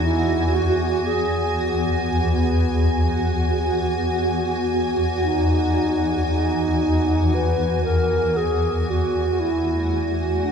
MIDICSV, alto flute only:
0, 0, Header, 1, 2, 480
1, 0, Start_track
1, 0, Key_signature, 4, "major"
1, 0, Tempo, 1034483
1, 24, Time_signature, 4, 2, 24, 8
1, 4880, End_track
2, 0, Start_track
2, 0, Title_t, "Alto flute"
2, 0, Program_c, 0, 73
2, 16, Note_on_c, 0, 64, 89
2, 254, Note_on_c, 0, 66, 88
2, 261, Note_off_c, 0, 64, 0
2, 494, Note_on_c, 0, 68, 87
2, 501, Note_off_c, 0, 66, 0
2, 854, Note_off_c, 0, 68, 0
2, 987, Note_on_c, 0, 59, 73
2, 1687, Note_off_c, 0, 59, 0
2, 2428, Note_on_c, 0, 63, 77
2, 2887, Note_off_c, 0, 63, 0
2, 2926, Note_on_c, 0, 63, 81
2, 3406, Note_on_c, 0, 71, 89
2, 3413, Note_off_c, 0, 63, 0
2, 3635, Note_off_c, 0, 71, 0
2, 3640, Note_on_c, 0, 70, 77
2, 3882, Note_on_c, 0, 68, 91
2, 3889, Note_off_c, 0, 70, 0
2, 4130, Note_on_c, 0, 66, 74
2, 4137, Note_off_c, 0, 68, 0
2, 4361, Note_on_c, 0, 64, 82
2, 4368, Note_off_c, 0, 66, 0
2, 4707, Note_off_c, 0, 64, 0
2, 4839, Note_on_c, 0, 62, 88
2, 4880, Note_off_c, 0, 62, 0
2, 4880, End_track
0, 0, End_of_file